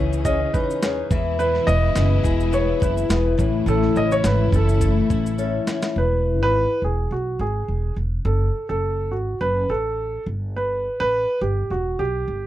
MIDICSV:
0, 0, Header, 1, 7, 480
1, 0, Start_track
1, 0, Key_signature, 4, "major"
1, 0, Tempo, 572519
1, 1167, Time_signature, 4, 2, 24, 8
1, 10453, End_track
2, 0, Start_track
2, 0, Title_t, "Upright piano"
2, 0, Program_c, 0, 0
2, 0, Note_on_c, 0, 76, 99
2, 176, Note_off_c, 0, 76, 0
2, 211, Note_on_c, 0, 75, 89
2, 448, Note_on_c, 0, 71, 81
2, 457, Note_off_c, 0, 75, 0
2, 894, Note_off_c, 0, 71, 0
2, 1165, Note_on_c, 0, 71, 100
2, 1398, Note_on_c, 0, 75, 109
2, 1413, Note_off_c, 0, 71, 0
2, 2127, Note_on_c, 0, 73, 91
2, 2142, Note_off_c, 0, 75, 0
2, 2371, Note_on_c, 0, 71, 81
2, 2373, Note_off_c, 0, 73, 0
2, 2813, Note_off_c, 0, 71, 0
2, 3089, Note_on_c, 0, 69, 94
2, 3330, Note_on_c, 0, 75, 97
2, 3333, Note_off_c, 0, 69, 0
2, 3455, Note_on_c, 0, 73, 106
2, 3462, Note_off_c, 0, 75, 0
2, 3566, Note_off_c, 0, 73, 0
2, 3569, Note_on_c, 0, 71, 94
2, 3788, Note_off_c, 0, 71, 0
2, 3821, Note_on_c, 0, 69, 88
2, 4737, Note_off_c, 0, 69, 0
2, 5013, Note_on_c, 0, 71, 91
2, 5375, Note_off_c, 0, 71, 0
2, 5388, Note_on_c, 0, 71, 112
2, 5704, Note_off_c, 0, 71, 0
2, 5738, Note_on_c, 0, 68, 73
2, 5972, Note_on_c, 0, 66, 75
2, 5976, Note_off_c, 0, 68, 0
2, 6211, Note_on_c, 0, 68, 72
2, 6214, Note_off_c, 0, 66, 0
2, 6653, Note_off_c, 0, 68, 0
2, 6919, Note_on_c, 0, 69, 76
2, 7267, Note_off_c, 0, 69, 0
2, 7287, Note_on_c, 0, 69, 89
2, 7642, Note_on_c, 0, 66, 63
2, 7650, Note_off_c, 0, 69, 0
2, 7866, Note_off_c, 0, 66, 0
2, 7887, Note_on_c, 0, 71, 99
2, 8131, Note_on_c, 0, 69, 90
2, 8133, Note_off_c, 0, 71, 0
2, 8575, Note_off_c, 0, 69, 0
2, 8858, Note_on_c, 0, 71, 91
2, 9210, Note_off_c, 0, 71, 0
2, 9223, Note_on_c, 0, 71, 115
2, 9545, Note_off_c, 0, 71, 0
2, 9570, Note_on_c, 0, 67, 71
2, 9816, Note_off_c, 0, 67, 0
2, 9819, Note_on_c, 0, 66, 82
2, 10054, Note_on_c, 0, 67, 86
2, 10061, Note_off_c, 0, 66, 0
2, 10453, Note_off_c, 0, 67, 0
2, 10453, End_track
3, 0, Start_track
3, 0, Title_t, "Nylon-string guitar"
3, 0, Program_c, 1, 24
3, 0, Note_on_c, 1, 52, 78
3, 0, Note_on_c, 1, 63, 60
3, 0, Note_on_c, 1, 68, 61
3, 200, Note_off_c, 1, 68, 0
3, 204, Note_on_c, 1, 68, 69
3, 445, Note_off_c, 1, 63, 0
3, 455, Note_on_c, 1, 63, 61
3, 687, Note_off_c, 1, 68, 0
3, 690, Note_on_c, 1, 68, 68
3, 925, Note_off_c, 1, 52, 0
3, 928, Note_on_c, 1, 52, 66
3, 983, Note_off_c, 1, 63, 0
3, 1166, Note_off_c, 1, 52, 0
3, 1169, Note_on_c, 1, 52, 78
3, 1649, Note_off_c, 1, 68, 0
3, 1652, Note_on_c, 1, 68, 60
3, 1885, Note_on_c, 1, 64, 65
3, 2120, Note_off_c, 1, 68, 0
3, 2131, Note_on_c, 1, 68, 74
3, 2361, Note_off_c, 1, 64, 0
3, 2364, Note_on_c, 1, 64, 61
3, 2591, Note_off_c, 1, 68, 0
3, 2601, Note_on_c, 1, 68, 61
3, 2835, Note_off_c, 1, 52, 0
3, 2838, Note_on_c, 1, 52, 69
3, 2894, Note_off_c, 1, 68, 0
3, 3076, Note_off_c, 1, 52, 0
3, 3079, Note_on_c, 1, 52, 87
3, 3311, Note_off_c, 1, 64, 0
3, 3314, Note_on_c, 1, 61, 61
3, 3559, Note_on_c, 1, 69, 65
3, 3784, Note_off_c, 1, 61, 0
3, 3794, Note_on_c, 1, 61, 57
3, 4026, Note_off_c, 1, 69, 0
3, 4036, Note_on_c, 1, 69, 64
3, 4265, Note_off_c, 1, 61, 0
3, 4275, Note_on_c, 1, 61, 63
3, 4506, Note_off_c, 1, 69, 0
3, 4516, Note_on_c, 1, 69, 68
3, 4749, Note_off_c, 1, 61, 0
3, 4759, Note_on_c, 1, 61, 58
3, 5051, Note_off_c, 1, 69, 0
3, 5052, Note_off_c, 1, 61, 0
3, 5472, Note_off_c, 1, 52, 0
3, 10453, End_track
4, 0, Start_track
4, 0, Title_t, "Twelve-string acoustic guitar"
4, 0, Program_c, 2, 25
4, 0, Note_on_c, 2, 52, 92
4, 0, Note_on_c, 2, 61, 68
4, 0, Note_on_c, 2, 68, 66
4, 202, Note_off_c, 2, 61, 0
4, 212, Note_on_c, 2, 61, 65
4, 456, Note_on_c, 2, 63, 66
4, 684, Note_off_c, 2, 61, 0
4, 694, Note_on_c, 2, 61, 57
4, 927, Note_off_c, 2, 52, 0
4, 931, Note_on_c, 2, 52, 85
4, 983, Note_off_c, 2, 61, 0
4, 984, Note_off_c, 2, 63, 0
4, 1164, Note_off_c, 2, 52, 0
4, 1167, Note_on_c, 2, 52, 82
4, 1402, Note_on_c, 2, 59, 65
4, 1645, Note_on_c, 2, 64, 56
4, 1870, Note_off_c, 2, 68, 0
4, 1874, Note_on_c, 2, 68, 69
4, 2100, Note_off_c, 2, 59, 0
4, 2111, Note_on_c, 2, 59, 73
4, 2343, Note_off_c, 2, 64, 0
4, 2346, Note_on_c, 2, 64, 69
4, 2581, Note_off_c, 2, 59, 0
4, 2591, Note_on_c, 2, 59, 59
4, 2831, Note_on_c, 2, 45, 79
4, 2889, Note_off_c, 2, 59, 0
4, 2890, Note_off_c, 2, 68, 0
4, 3064, Note_off_c, 2, 45, 0
4, 3074, Note_on_c, 2, 45, 84
4, 3322, Note_on_c, 2, 61, 57
4, 3558, Note_off_c, 2, 64, 0
4, 3562, Note_on_c, 2, 64, 55
4, 3797, Note_on_c, 2, 69, 67
4, 4027, Note_off_c, 2, 52, 0
4, 4031, Note_on_c, 2, 57, 62
4, 4271, Note_off_c, 2, 64, 0
4, 4274, Note_on_c, 2, 64, 65
4, 4502, Note_off_c, 2, 61, 0
4, 4512, Note_on_c, 2, 61, 59
4, 4759, Note_off_c, 2, 64, 0
4, 4762, Note_on_c, 2, 64, 60
4, 4996, Note_off_c, 2, 45, 0
4, 5048, Note_off_c, 2, 57, 0
4, 5049, Note_off_c, 2, 61, 0
4, 5051, Note_off_c, 2, 69, 0
4, 5473, Note_off_c, 2, 64, 0
4, 10453, End_track
5, 0, Start_track
5, 0, Title_t, "String section"
5, 0, Program_c, 3, 48
5, 0, Note_on_c, 3, 49, 74
5, 0, Note_on_c, 3, 52, 80
5, 0, Note_on_c, 3, 61, 80
5, 897, Note_off_c, 3, 52, 0
5, 911, Note_off_c, 3, 49, 0
5, 913, Note_off_c, 3, 61, 0
5, 932, Note_on_c, 3, 47, 73
5, 934, Note_on_c, 3, 64, 87
5, 937, Note_on_c, 3, 56, 63
5, 2826, Note_off_c, 3, 47, 0
5, 2827, Note_off_c, 3, 64, 0
5, 2829, Note_off_c, 3, 56, 0
5, 2841, Note_on_c, 3, 64, 75
5, 2844, Note_on_c, 3, 49, 65
5, 2844, Note_on_c, 3, 57, 66
5, 4978, Note_off_c, 3, 64, 0
5, 4979, Note_off_c, 3, 57, 0
5, 4980, Note_off_c, 3, 49, 0
5, 10453, End_track
6, 0, Start_track
6, 0, Title_t, "Upright bass"
6, 0, Program_c, 4, 32
6, 0, Note_on_c, 4, 37, 90
6, 363, Note_off_c, 4, 37, 0
6, 455, Note_on_c, 4, 40, 85
6, 845, Note_off_c, 4, 40, 0
6, 927, Note_on_c, 4, 40, 100
6, 1320, Note_off_c, 4, 40, 0
6, 1403, Note_on_c, 4, 28, 113
6, 1601, Note_off_c, 4, 28, 0
6, 1646, Note_on_c, 4, 30, 106
6, 1842, Note_off_c, 4, 30, 0
6, 1881, Note_on_c, 4, 28, 85
6, 2276, Note_off_c, 4, 28, 0
6, 2364, Note_on_c, 4, 30, 78
6, 2560, Note_off_c, 4, 30, 0
6, 2594, Note_on_c, 4, 28, 84
6, 2794, Note_off_c, 4, 28, 0
6, 2840, Note_on_c, 4, 33, 89
6, 3038, Note_off_c, 4, 33, 0
6, 3069, Note_on_c, 4, 33, 105
6, 3271, Note_off_c, 4, 33, 0
6, 3318, Note_on_c, 4, 33, 89
6, 3517, Note_off_c, 4, 33, 0
6, 3554, Note_on_c, 4, 32, 107
6, 3754, Note_off_c, 4, 32, 0
6, 3792, Note_on_c, 4, 30, 93
6, 4189, Note_off_c, 4, 30, 0
6, 4278, Note_on_c, 4, 33, 84
6, 4673, Note_off_c, 4, 33, 0
6, 4997, Note_on_c, 4, 28, 91
6, 5367, Note_off_c, 4, 28, 0
6, 5367, Note_on_c, 4, 32, 73
6, 5566, Note_off_c, 4, 32, 0
6, 5717, Note_on_c, 4, 28, 73
6, 5915, Note_off_c, 4, 28, 0
6, 5959, Note_on_c, 4, 35, 71
6, 6157, Note_off_c, 4, 35, 0
6, 6198, Note_on_c, 4, 32, 83
6, 6396, Note_off_c, 4, 32, 0
6, 6441, Note_on_c, 4, 28, 74
6, 6638, Note_off_c, 4, 28, 0
6, 6677, Note_on_c, 4, 28, 76
6, 6876, Note_off_c, 4, 28, 0
6, 6915, Note_on_c, 4, 30, 98
6, 7115, Note_off_c, 4, 30, 0
6, 7290, Note_on_c, 4, 30, 82
6, 7644, Note_off_c, 4, 30, 0
6, 7644, Note_on_c, 4, 32, 85
6, 7841, Note_off_c, 4, 32, 0
6, 7886, Note_on_c, 4, 30, 86
6, 8082, Note_off_c, 4, 30, 0
6, 8125, Note_on_c, 4, 33, 72
6, 8519, Note_off_c, 4, 33, 0
6, 8605, Note_on_c, 4, 31, 83
6, 9108, Note_off_c, 4, 31, 0
6, 9222, Note_on_c, 4, 33, 70
6, 9417, Note_off_c, 4, 33, 0
6, 9569, Note_on_c, 4, 31, 89
6, 9765, Note_off_c, 4, 31, 0
6, 9811, Note_on_c, 4, 28, 73
6, 10007, Note_off_c, 4, 28, 0
6, 10052, Note_on_c, 4, 35, 74
6, 10247, Note_off_c, 4, 35, 0
6, 10292, Note_on_c, 4, 31, 71
6, 10453, Note_off_c, 4, 31, 0
6, 10453, End_track
7, 0, Start_track
7, 0, Title_t, "Drums"
7, 107, Note_on_c, 9, 82, 57
7, 191, Note_off_c, 9, 82, 0
7, 209, Note_on_c, 9, 36, 81
7, 209, Note_on_c, 9, 82, 72
7, 293, Note_off_c, 9, 36, 0
7, 293, Note_off_c, 9, 82, 0
7, 452, Note_on_c, 9, 82, 43
7, 453, Note_on_c, 9, 36, 83
7, 536, Note_off_c, 9, 82, 0
7, 537, Note_off_c, 9, 36, 0
7, 591, Note_on_c, 9, 82, 55
7, 674, Note_off_c, 9, 82, 0
7, 691, Note_on_c, 9, 82, 74
7, 692, Note_on_c, 9, 38, 102
7, 775, Note_off_c, 9, 82, 0
7, 776, Note_off_c, 9, 38, 0
7, 928, Note_on_c, 9, 36, 110
7, 928, Note_on_c, 9, 82, 54
7, 1012, Note_off_c, 9, 36, 0
7, 1012, Note_off_c, 9, 82, 0
7, 1169, Note_on_c, 9, 82, 53
7, 1253, Note_off_c, 9, 82, 0
7, 1297, Note_on_c, 9, 38, 36
7, 1381, Note_off_c, 9, 38, 0
7, 1408, Note_on_c, 9, 82, 55
7, 1492, Note_off_c, 9, 82, 0
7, 1639, Note_on_c, 9, 38, 93
7, 1643, Note_on_c, 9, 82, 78
7, 1723, Note_off_c, 9, 38, 0
7, 1727, Note_off_c, 9, 82, 0
7, 1881, Note_on_c, 9, 36, 89
7, 1884, Note_on_c, 9, 82, 47
7, 1965, Note_off_c, 9, 36, 0
7, 1968, Note_off_c, 9, 82, 0
7, 2015, Note_on_c, 9, 82, 49
7, 2098, Note_off_c, 9, 82, 0
7, 2120, Note_on_c, 9, 82, 73
7, 2204, Note_off_c, 9, 82, 0
7, 2364, Note_on_c, 9, 36, 84
7, 2365, Note_on_c, 9, 82, 42
7, 2448, Note_off_c, 9, 36, 0
7, 2449, Note_off_c, 9, 82, 0
7, 2493, Note_on_c, 9, 82, 57
7, 2577, Note_off_c, 9, 82, 0
7, 2600, Note_on_c, 9, 82, 70
7, 2601, Note_on_c, 9, 38, 110
7, 2684, Note_off_c, 9, 82, 0
7, 2685, Note_off_c, 9, 38, 0
7, 2840, Note_on_c, 9, 36, 98
7, 2842, Note_on_c, 9, 82, 48
7, 2924, Note_off_c, 9, 36, 0
7, 2926, Note_off_c, 9, 82, 0
7, 3082, Note_on_c, 9, 82, 53
7, 3166, Note_off_c, 9, 82, 0
7, 3208, Note_on_c, 9, 38, 36
7, 3291, Note_off_c, 9, 38, 0
7, 3319, Note_on_c, 9, 82, 49
7, 3403, Note_off_c, 9, 82, 0
7, 3449, Note_on_c, 9, 82, 57
7, 3533, Note_off_c, 9, 82, 0
7, 3554, Note_on_c, 9, 38, 88
7, 3558, Note_on_c, 9, 82, 83
7, 3638, Note_off_c, 9, 38, 0
7, 3642, Note_off_c, 9, 82, 0
7, 3794, Note_on_c, 9, 36, 92
7, 3800, Note_on_c, 9, 82, 45
7, 3878, Note_off_c, 9, 36, 0
7, 3884, Note_off_c, 9, 82, 0
7, 3930, Note_on_c, 9, 82, 53
7, 4014, Note_off_c, 9, 82, 0
7, 4033, Note_on_c, 9, 36, 83
7, 4033, Note_on_c, 9, 82, 74
7, 4116, Note_off_c, 9, 82, 0
7, 4117, Note_off_c, 9, 36, 0
7, 4277, Note_on_c, 9, 82, 45
7, 4278, Note_on_c, 9, 36, 79
7, 4360, Note_off_c, 9, 82, 0
7, 4362, Note_off_c, 9, 36, 0
7, 4412, Note_on_c, 9, 82, 55
7, 4496, Note_off_c, 9, 82, 0
7, 4514, Note_on_c, 9, 82, 69
7, 4598, Note_off_c, 9, 82, 0
7, 4754, Note_on_c, 9, 82, 53
7, 4756, Note_on_c, 9, 38, 92
7, 4838, Note_off_c, 9, 82, 0
7, 4840, Note_off_c, 9, 38, 0
7, 4880, Note_on_c, 9, 82, 47
7, 4884, Note_on_c, 9, 38, 94
7, 4964, Note_off_c, 9, 82, 0
7, 4968, Note_off_c, 9, 38, 0
7, 10453, End_track
0, 0, End_of_file